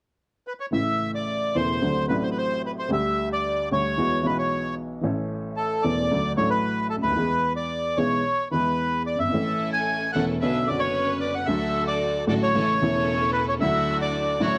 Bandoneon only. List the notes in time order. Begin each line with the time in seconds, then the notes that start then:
0.47 B4
0.60 C#5
0.73 E5
1.15 D5
1.55 C5
2.09 B4
2.23 C5
2.31 B4
2.38 C5
2.66 B4
2.79 C5
2.93 E5
3.33 D5
3.73 C#5
4.26 B4
4.38 C#5
5.57 A4
5.82 D5
6.37 C#5
6.50 B4
6.90 A4
7.02 B4
7.56 D5
7.97 C#5
8.52 B4
9.06 D5
9.19 E5
9.73 G#5
10.12 F#5
10.41 E5
10.67 D5
10.79 C#5
11.21 D5
11.35 F#5
11.46 E5
11.87 D5
12.28 D5
12.43 C#5
13.33 B4
13.49 C#5
13.61 E5
14.02 D5
14.42 C#5